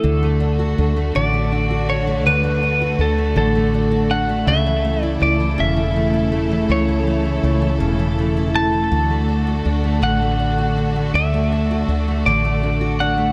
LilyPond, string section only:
\new Staff \with { instrumentName = "String section" } { \time 6/8 \key d \major \tempo 4. = 54 << { <a a'>2.~ | <a a'>2.~ | <a a'>2.~ | <a a'>2.~ |
<a a'>2.~ | <a a'>2. | } \\ { <d fis'>2.~ | <d fis'>2. | <cis e'>2.~ | <cis e'>2. |
<d fis'>2.~ | <d fis'>2. | } >> }